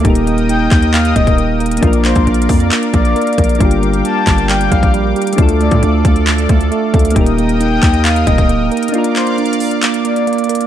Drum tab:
HH |x-----x-----x-----x-----x-----------x-----x-----x-----x-----x-----x-----x-----------x--x--x--x--|x-----x-----x-----x-----x---x---x---o-----x-----x-----x-----x-----x-----x--x--x--x--x--x--x--x--|x-----x-----x-----x-----x-----------x-----x-----x-----x-----x-----x-----x-----------x--x--x--x--|x-----x-----x-----x-----x-----------x-----x-----x-----x-----x-----x-----x-----------x--x--x--x--|
CP |------------------------------------x-----------x-----------------------------------------------|------------x-----------------------------------x-----------------------------------------------|------------------------------------x-----------x-----------------------------------------------|------------------------------------------------x-----------------------------------------------|
BD |o-----------------------------------o-----------------------o-----o-----------------------------|o-----------------o-----------------o-----------------------o-----------------------o-----------|o-----------------------------------o-----------------------o-----o-----------------------------|o-----------------o-----------------o-----------------------o-----------------------o-----------|

HH |x-----x-----x-----x-----x-----------x-----x-----x-----x-----x-----x-----x-----------x--x--x--x--|x-----x-----x-----x-----x---x---x---o-----x-----x-----x-----x-----x-----x--x--x--x--x--x--x-----|
CP |------------------------------------x-----------x-----------------------------------------------|------------x-----------------------------------x-----------------------------------------------|
BD |o-----------------------------------o-----------------------o-----o-----------------------------|------------------------------------------------------------------------------------------------|